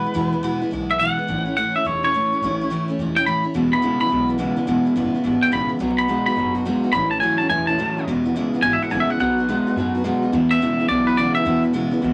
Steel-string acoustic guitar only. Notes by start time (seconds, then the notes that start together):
0.04 E3 G#3 B3 E4
0.14 E2 B2 E3 G#3 B3 E4
0.32 E3 G#3 B3 E4
0.43 E2 B2 E3 G#3 B3 E4
0.62 E3 G#3 B3 E4
0.71 E3 G#3 B3 E4
0.90 E3 G#3 B3 E4
0.99 E2 B2 E3 G#3 B3 E4
1.17 E3 G#3 B3 E4
1.27 A2 E3 A3 C#4 E4
1.46 A3 C#4 E4
1.57 A2 E3 A3 C#4 E4
1.75 A3 C#4 E4
1.85 E3 A3 C#4 E4
2.03 A3 C#4 E4
2.14 A2 E3 A3 C#4 E4
2.32 A3 C#4 E4
2.43 A2 E3 A3 C#4 E4
2.61 A3 C#4 E4
2.70 A2 E3 A3 C#4 E4
2.88 A3 C#4 E4
2.99 E3 A3 C#4 E4
3.16 A3 C#4 E4
3.26 A2 E3 A3 C#4 E4
3.43 A3 C#4 E4
3.54 E2 B2 E3 G#3 B3 E4
3.72 E3 G#3 B3 E4
3.82 E2 B2 E3 G#3 B3 E4
3.99 E3 G#3 B3 E4
4.09 E3 G#3 B3 E4
4.28 E3 G#3 B3 E4
4.38 E2 B2 E3 G#3 B3 E4
4.56 E3 G#3 B3 E4
4.67 E2 B2 E3 G#3 B3 E4
4.85 E3 G#3 B3 E4
4.96 E2 B2 E3 G#3 B3 E4
5.14 E3 G#3 B3 E4
5.24 E3 G#3 B3 E4
5.41 E3 G#3 B3 E4
5.51 E2 B2 E3 G#3 B3 E4
5.68 E3 G#3 B3 E4
5.79 B2 F#3 B3 D#4 F#4
5.98 B3 D#4 F#4
6.08 B2 F#3 B3 D#4 F#4
6.27 B3 D#4 F#4
6.36 F#3 B3 D#4 F#4
6.55 B3 D#4 F#4
6.65 B2 F#3 B3 D#4 F#4
6.84 B3 D#4 F#4
6.94 A2 E3 A3 C#4 E4
7.12 A3 C#4 E4
7.22 A2 E3 A3 C#4 E4
7.40 A3 C#4 E4
7.50 E3 A3 C#4 E4
7.68 A3 C#4 E4
7.78 A2 E3 A3 C#4 E4
7.97 A3 C#4 E4
8.08 E2 B2 E3 G#3 B3 E4
8.25 E3 G#3 B3 E4
8.36 E2 B2 E3 G#3 B3 E4
8.54 E3 G#3 B3 E4
8.64 E3 G#3 B3 E4
8.82 E3 G#3 B3 E4
8.90 E2 B2 E3 G#3 B3 E4
9.09 E3 G#3 B3 E4
9.20 B2 F#3 B3 D#4 F#4
9.38 B3 D#4 F#4
9.49 B2 F#3 B3 D#4 F#4
9.67 B3 D#4 F#4
9.77 F#3 B3 D#4 F#4
9.95 B3 D#4 F#4
10.04 B2 F#3 B3 D#4 F#4
10.22 B3 D#4 F#4
10.32 E2 B2 E3 G#3 B3 E4
10.50 E3 G#3 B3 E4
10.61 E2 B2 E3 G#3 B3 E4
10.79 E3 G#3 B3 E4
10.89 E3 G#3 B3 E4
11.07 E3 G#3 B3 E4
11.18 E2 B2 E3 G#3 B3 E4
11.36 E3 G#3 B3 E4
11.45 E2 B2 E3 G#3 B3 E4
11.63 E3 G#3 B3 E4
11.73 E2 B2 E3 G#3 B3 E4
11.91 E3 G#3 B3 E4
12.02 E3 G#3 B3 E4